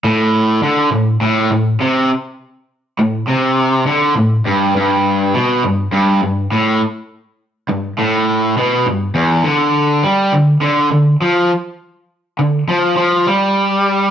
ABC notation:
X:1
M:4/4
L:1/8
Q:1/4=102
K:Glyd
V:1 name="Overdriven electric guitar" clef=bass
A,,2 D, A,, A,, A,, =C, z | z2 A,, =C,2 D, A,, G,, | G,,2 B,, G,, G,, G,, A,, z | z2 G,, A,,2 B,, G,, E,, |
D,2 G, D, D, D, =F, z | z2 D, =F, F, G,3 |]